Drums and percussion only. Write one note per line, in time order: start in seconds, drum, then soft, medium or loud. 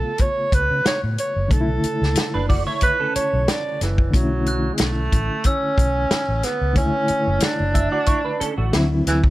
0.18 kick medium
0.18 closed hi-hat medium
0.52 kick medium
0.52 closed hi-hat medium
0.86 snare loud
0.86 closed hi-hat medium
1.18 closed hi-hat medium
1.51 kick medium
1.51 closed hi-hat medium
1.84 closed hi-hat medium
2.03 snare soft
2.15 snare loud
2.15 closed hi-hat medium
2.50 kick medium
2.50 open hi-hat soft
2.81 kick medium
2.81 closed hi-hat medium
3.16 closed hi-hat medium
3.48 snare loud
3.48 closed hi-hat medium
3.81 snare soft
3.81 closed hi-hat medium
3.98 kick medium
4.13 kick medium
4.13 closed hi-hat medium
4.46 closed hi-hat medium
4.78 snare loud
4.78 closed hi-hat medium
5.12 kick medium
5.12 closed hi-hat medium
5.44 kick medium
5.44 closed hi-hat medium
5.78 kick medium
5.78 closed hi-hat medium
6.11 snare loud
6.11 closed hi-hat medium
6.43 snare soft
6.43 closed hi-hat medium
6.76 kick medium
6.76 closed hi-hat medium
7.08 closed hi-hat medium
7.40 snare loud
7.40 closed hi-hat medium
7.75 kick medium
7.75 closed hi-hat medium
8.06 kick medium
8.06 closed hi-hat medium
8.41 closed hi-hat medium
8.73 snare loud
8.73 closed hi-hat medium
9.07 snare soft
9.07 closed hi-hat medium
9.24 kick medium